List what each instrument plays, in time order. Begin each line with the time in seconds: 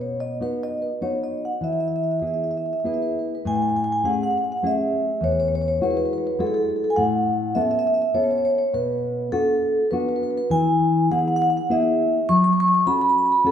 Already playing: nylon-string guitar B2
0.01 vibraphone C#5
0.20 vibraphone D#5
0.40 nylon-string guitar B3 D#4 F#4, vibraphone B4
0.63 vibraphone D#5
0.82 vibraphone B4
1.01 nylon-string guitar B3 D#4 F#4, vibraphone C#5
1.24 vibraphone D#5
1.45 vibraphone F#5
1.61 nylon-string guitar E3, vibraphone E5
1.73 vibraphone E5
1.80 vibraphone E5
1.88 vibraphone E5
1.96 vibraphone E5
2.03 vibraphone E5
2.11 vibraphone E5
2.20 nylon-string guitar B3 E4 G#4, vibraphone E5
2.27 vibraphone E5
2.34 vibraphone E5
2.44 vibraphone E5
2.51 vibraphone E5
2.57 vibraphone E5
2.66 vibraphone E5
2.73 vibraphone E5
2.80 vibraphone E5
2.84 nylon-string guitar B3 E4 G#4, vibraphone B4 E5
2.93 vibraphone B4 E5
3.02 vibraphone B4 E5
3.11 vibraphone B4
3.19 vibraphone B4
3.28 vibraphone B4
3.35 vibraphone B4
3.45 nylon-string guitar A2, vibraphone G#5
3.55 vibraphone G#5
3.62 vibraphone G#5
3.69 vibraphone G#5
3.77 vibraphone G#5
3.84 vibraphone G#5
3.92 vibraphone G#5
4.04 nylon-string guitar A3 C#4 G#4, vibraphone F#5
4.14 vibraphone F#5
4.23 vibraphone F#5
4.31 vibraphone F#5
4.38 vibraphone F#5
4.44 vibraphone F#5
4.52 vibraphone F#5
4.57 vibraphone F#5
4.63 nylon-string guitar A3 C#4 G#4
4.67 vibraphone E5
5.21 nylon-string guitar E2, vibraphone C#5
5.32 vibraphone C#5
5.40 vibraphone C#5
5.48 vibraphone C#5
5.55 vibraphone C#5
5.62 vibraphone C#5
5.68 vibraphone C#5
5.81 nylon-string guitar G#3 E4 F#4, vibraphone B4
5.91 vibraphone B4
5.97 vibraphone B4
6.06 vibraphone B4
6.13 vibraphone B4
6.18 vibraphone B4
6.27 vibraphone B4
6.39 nylon-string guitar G#3 E4 F#4, vibraphone A4
6.47 vibraphone A4
6.54 vibraphone A4
6.63 vibraphone A4
6.69 vibraphone A4
6.76 vibraphone A4
6.84 vibraphone A4
6.90 vibraphone G#5
6.96 nylon-string guitar A2, vibraphone F#5
7.55 nylon-string guitar B3 C#4 A4, vibraphone E5
7.61 vibraphone E5
7.71 vibraphone E5
7.79 vibraphone E5
7.87 vibraphone E5
7.94 vibraphone E5
8.02 vibraphone E5
8.14 nylon-string guitar B3 C#4 A4, vibraphone C#5
8.24 vibraphone C#5
8.31 vibraphone C#5
8.38 vibraphone C#5
8.45 vibraphone C#5
8.51 vibraphone C#5
8.58 vibraphone C#5
8.73 nylon-string guitar B2, vibraphone B4
9.32 nylon-string guitar B3 D4 F#4, vibraphone A4
9.91 nylon-string guitar B3 D4 F#4, vibraphone B4
10.00 vibraphone B4
10.09 vibraphone B4
10.16 vibraphone B4
10.23 vibraphone B4
10.31 vibraphone B4
10.37 vibraphone B4
10.50 nylon-string guitar E3, vibraphone G#5
11.11 nylon-string guitar B3 E4 G#4, vibraphone F#5
11.19 vibraphone F#5
11.28 vibraphone F#5
11.36 vibraphone F#5
11.42 vibraphone F#5
11.50 vibraphone F#5
11.57 vibraphone F#5
11.70 nylon-string guitar B3 E4 G#4, vibraphone E5
12.29 nylon-string guitar F#3, vibraphone C#6
12.37 vibraphone C#6
12.44 vibraphone C#6
12.53 vibraphone C#6
12.60 vibraphone C#6
12.68 vibraphone C#6
12.74 vibraphone C#6
12.86 nylon-string guitar C#4 F#4 A4, vibraphone B5
12.94 vibraphone B5
13.01 vibraphone B5
13.09 vibraphone B5
13.18 vibraphone B5
13.26 vibraphone B5
13.32 vibraphone B5
13.44 nylon-string guitar C#4 F#4 A4, vibraphone A4